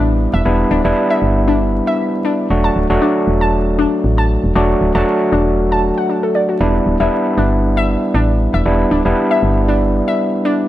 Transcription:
Already playing: fm bass A1, tine electric piano G3 B3 D4 E4
0.33 fm bass E1, synth pluck E5
0.45 fm bass E1, tine electric piano G3 B3 D4 E4
0.71 fm bass D1, synth pluck D4
0.85 fm bass E1, tine electric piano G3 B3 D4 E4
1.10 synth pluck E5
1.22 fm bass G1
1.48 synth pluck D4
1.87 synth pluck E5
2.25 synth pluck D4
2.50 fm bass E1, tine electric piano F#3 A3 D4 F#4
2.64 synth pluck A5
2.76 fm bass D1
2.90 fm bass E1, tine electric piano F#3 A3 D4 F#4
3.02 synth pluck D4
3.27 fm bass E1
3.41 synth pluck A5
3.79 synth pluck D4
4.04 fm bass A1
4.18 synth pluck A5
4.44 fm bass E1
4.55 fm bass E1, tine electric piano F#3 A3 D4 F#4, synth pluck D4
4.81 fm bass D1
4.95 fm bass E1, tine electric piano F#3 A3 D4 F#4, synth pluck A5
5.32 fm bass E1, synth pluck D4
5.72 synth pluck A5
5.98 synth pluck F#5
6.09 synth pluck D4
6.23 synth pluck A4
6.35 synth pluck D5
6.49 synth pluck F#4
6.61 fm bass E1, tine electric piano G3 B3 D4 E4, synth pluck D4
6.86 fm bass D1
7.00 fm bass E1, tine electric piano G3 B3 D4 E4, synth pluck E5
7.37 fm bass G1, synth pluck D4
7.77 synth pluck E5
8.14 fm bass A1, synth pluck D4
8.54 fm bass E1, synth pluck E5
8.66 fm bass E1, tine electric piano G3 B3 D4 E4
8.91 fm bass D1, synth pluck D4
9.05 fm bass E1, tine electric piano G3 B3 D4 E4
9.31 synth pluck E5
9.43 fm bass G1
9.68 synth pluck D4
10.08 synth pluck E5
10.45 synth pluck D4

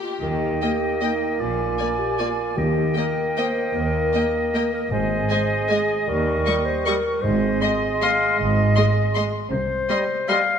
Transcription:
Already playing: violin section G4
0.02 clarinet F4
0.21 double bass section D#2, cello section D#3, bassoon A#3, clarinet G4, oboe D#5, flute section G5
0.62 viola section A#3, clarinet G4, violin section D#5 G5
1.02 viola section A#3, clarinet D#4, violin section D#5 G5
1.40 double bass section A#1, cello section A#2, clarinet F4, oboe D5, flute section G#5
1.79 viola section A#3, violin section D5 G#5
1.99 clarinet G4
2.19 viola section A#3, clarinet F4, violin section D5 G#5
2.56 cello section D#2, double bass section D#2, timpani D#3, bassoon A#3, clarinet G4, oboe D#5, flute section G5
2.95 viola section A#3, clarinet A#4, violin section D#5 G5
3.37 viola section A#3, clarinet C5, violin section D#5 G5
3.75 double bass section D#2, cello section D#2, clarinet A#4
4.14 viola section A#3, violin section D#5 G5
4.54 viola section A#3, violin section D#5 G5
4.73 clarinet A#4
4.91 double bass section G#1, cello section G#2, timpani G#2, bassoon G#3, clarinet C5, oboe D#5, flute section G#5
5.29 viola section G#3, clarinet C5, violin section D#5 G#5
5.68 viola section G#3, clarinet G#4, violin section D#5 G#5
6.08 double bass section D#2, cello section D#2, bassoon G3, clarinet A#4, flute section C#6
6.46 viola section G3, violin section D#5 C#6
6.66 clarinet C5
6.85 viola section G3, clarinet A#4, violin section D#5 C#6
7.22 double bass section G#1, cello section G#2, timpani G#2, bassoon G#3, clarinet C5, oboe D#5, flute section C6
7.61 viola section G#3, clarinet D#5, violin section D#5 C6
8.01 viola section G#3, violin section D#5 C6, clarinet F5
8.39 double bass section G#1, cello section G#2, clarinet D#5
8.76 viola section G#3, violin section D#5 C6
9.14 viola section G#3, violin section D#5 C6
9.51 double bass section C2, cello section C3, clarinet C5
9.89 viola section G3, bassoon G3, violin section D#5 C6, oboe D#5, flute section C6
10.28 bassoon G3, viola section G3, oboe D#5, violin section D#5 C6, clarinet F5, flute section C6

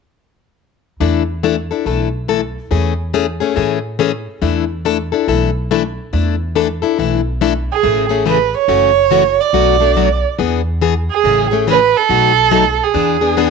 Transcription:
1.00 upright bass E2, steel-string acoustic guitar E3 A3 D4 E4 A4
1.43 steel-string acoustic guitar E3 A3 D4 E4 A4
1.71 steel-string acoustic guitar D4 E4 A4
1.85 upright bass B1, steel-string acoustic guitar E3 A3 D4 E4 A4
2.28 steel-string acoustic guitar E3 A3 D4 E4 A4
2.71 upright bass E2, steel-string acoustic guitar E3 A3 C#4 G#4
3.13 steel-string acoustic guitar E3 A3 C#4 G#4
3.40 steel-string acoustic guitar A3 C#4 G#4
3.56 upright bass A2, steel-string acoustic guitar E3 A3 C#4 G#4
3.99 steel-string acoustic guitar E3 A3 C#4 G#4
4.42 upright bass E2, steel-string acoustic guitar E3 A3 D4 E4 A4
4.85 steel-string acoustic guitar E3 A3 D4 E4 A4
5.12 steel-string acoustic guitar D4 E4 A4
5.28 upright bass B1, steel-string acoustic guitar E3 A3 D4 E4 A4
5.71 steel-string acoustic guitar E3 A3 D4 E4 A4
6.13 upright bass E2, steel-string acoustic guitar E3 A3 D4 E4 A4
6.55 steel-string acoustic guitar E3 A3 D4 E4 A4
6.82 steel-string acoustic guitar D4 E4 A4
6.98 upright bass B1, steel-string acoustic guitar E3 A3 D4 E4 A4
7.41 steel-string acoustic guitar E3 A3 D4 E4 A4
7.72 violin G#4
7.83 upright bass A1, steel-string acoustic guitar C#3 E3 A3 C#4 G#4
8.09 steel-string acoustic guitar A3 C#4 G#4
8.25 steel-string acoustic guitar C#3 E3 A3 C#4 G#4
8.29 violin B4
8.57 violin C#5
8.68 upright bass F#1, steel-string acoustic guitar C#3 E3 A3 C#4 F#4
9.10 steel-string acoustic guitar C#3 E3 A3 C#4 F#4
9.41 violin D5
9.53 upright bass B1, steel-string acoustic guitar B2 F#3 A3 D4 F#4
9.80 steel-string acoustic guitar A3 D4 F#4
9.96 steel-string acoustic guitar B2 F#3 A3 D4 F#4
10.38 upright bass E2, steel-string acoustic guitar E3 B3 D4 G#4
10.81 steel-string acoustic guitar E3 B3 D4 G#4
11.11 violin G#4
11.24 upright bass A1, steel-string acoustic guitar C#3 E3 A3 C#4 G#4
11.51 steel-string acoustic guitar A3 C#4 G#4
11.67 steel-string acoustic guitar C#3 E3 A3 C#4 G#4, violin B4
11.97 violin A4
12.09 upright bass B1, steel-string acoustic guitar B2 F#3 A3 D#4 F#4
12.51 steel-string acoustic guitar B2 F#3 A3 D#4 F#4
12.83 violin G#4
12.94 upright bass E2, steel-string acoustic guitar E3 B3 D4 G#4
13.21 steel-string acoustic guitar B3 D4 G#4
13.37 steel-string acoustic guitar E3 B3 D4 G#4

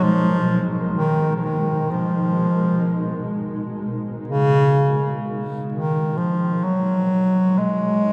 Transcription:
Already playing: ambient pad B2 G#3 D#4 A#4
0.03 bass clarinet F3
0.95 bass clarinet D#3
1.36 bass clarinet F3
1.43 bass clarinet D#3
1.91 bass clarinet F3
4.28 bass clarinet C#3
5.72 bass clarinet D#3
6.17 bass clarinet F3
6.64 bass clarinet F#3
7.58 bass clarinet G#3

